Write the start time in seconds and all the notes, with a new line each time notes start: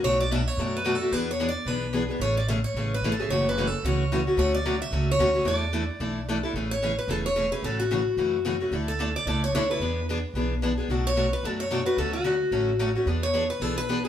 0.03 B1 B2 F#3 A3 D4 F#4 C#5
0.20 D5
0.31 B2 F#3 A3 D4 F#4 E5
0.47 C#5
0.57 F#2 B2 F#3 A3 D4 F#4
0.77 B4
0.85 B2 F#3 A3 D4 F#4
0.95 A4
1.01 A3 D4 F#4
1.11 E2 E3 B3 D4 G#4 B4
1.31 C#5
1.40 E3 B3 D4 G#4
1.49 D5
1.65 B1 E3 B3 D4 G#4 B4
1.93 E3 B3 D4 G#4
2.09 B3 D4 G#4
2.20 A1 C#3 E3 A3 C#4 G#4 C#5
2.37 D5
2.48 C#3 E3 A3 C#4 G#4 E5
2.64 C#5
2.74 A1 C#3 E3 A3 C#4 G#4
2.94 B4
3.01 G#1 C#3 E3 A3 C#4
3.05 G#4
3.12 A4
3.20 A3 C#4 G#4
3.29 F#1 C#3 E3 A3 C#4 F#4 C#5
3.49 B4
3.57 C#3 E3 A3 C#4 F#4
3.67 A4
3.83 C#2 C#3 E3 A3 C#4 F#4 C#5
4.12 C#3 E3 A3 C#4 F#4
4.27 A3 C#4 F#4
4.37 D2 D3 F#3 A3 C#4 F#4 C#5
4.54 D5
4.65 D3 F#3 A3 C#4 F#4
4.82 E5
4.91 C#2 D3 F#3 A3 C#4 F#4
5.12 C#5
5.18 D2 D3 F#3 A3 C#4 F#4
5.34 A3 C#4 F#4
5.45 E2 E3 A3 D4 E4 A4 D5
5.73 E3 A3 D4 E4 A4
5.99 B1 E3 A3 D4 E4 A4
6.29 E3 A3 D4 E4 A4
6.43 D4 E4 A4
6.53 A1 C#3 E3 A3 C#4 G#4
6.71 C#5
6.82 C#3 E3 A3 C#4 G#4
6.99 B4
7.08 E1 C#3 E3 A3 C#4 G#4 A4
7.26 C#5
7.36 C#3 E3 A3 C#4 G#4
7.52 A3 C#4 G#4 B4
7.62 A1 C#3 E3 A3 C#4 F#4 A4
7.80 F#4
7.91 C#3 E3 A3 C#4 F#4
8.17 F#2 C#3 E3 A3 C#4 F#4
8.45 C#3 E3 A3 C#4 F#4
8.60 A3 C#4 F#4
8.71 D2 D3 A3 D4 E4 A4
8.88 A4
8.99 D3 A3 D4 E4 A4
9.16 D5
9.25 C#2 D3 A3 D4 E4 A4 D5
9.44 C#5
9.52 D2 D3 A3 D4 E4 A4 C#5
9.70 D4 E4 A4 B4
9.80 E2 E3 B3 D4 G#4
10.09 E3 B3 D4 G#4
10.34 B1 E3 B3 D4 G#4
10.62 E3 B3 D4 G#4
10.78 B3 D4 G#4
10.89 B1 B2 F#3 A3 D4 F#4
11.07 C#5
11.16 B2 F#3 A3 D4 F#4
11.33 B4
11.43 F#2 B2 F#3 A3 D4 F#4 A4
11.60 C#5
11.71 B2 F#3 A3 D4 F#4
11.86 A3 D4 F#4 B4
11.97 D2 D3 F#3 A3 C#4 F#4 A4
12.13 F#4
12.24 D3 F#3 A3 C#4 F#4
12.51 A1 D3 F#3 A3 C#4 F#4
12.79 D3 F#3 A3 C#4 F#4
12.95 A3 C#4 F#4
13.06 E2 E3 B3 D4 G#4
13.23 C#5
13.33 E3 B3 D4 G#4
13.50 B4
13.60 B1 E3 B3 D4 G#4 A4
13.78 B4
13.89 E3 B3 D4 G#4
14.04 D4 G#4 A4